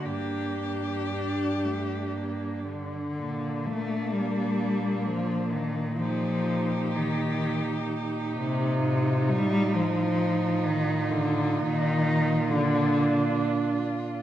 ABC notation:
X:1
M:3/4
L:1/8
Q:1/4=64
K:Gm
V:1 name="Cello"
G4- G z | [K:Bb] D6 | G6 | F6- |
F6 |]
V:2 name="Cello"
D6 | [K:Bb] B,6 | E6- | E6- |
E2 D4 |]
V:3 name="Cello" clef=bass
B,2 D A, B, D,- | [K:Bb] D, A, G,2 F, E, | F,2 E,2 z C,- | C, G, F,2 E, D, |
E,2 D,2 z2 |]
V:4 name="Cello" clef=bass
G,,6 | [K:Bb] B,,6- | B,,6 | A,,6 |
B,,6 |]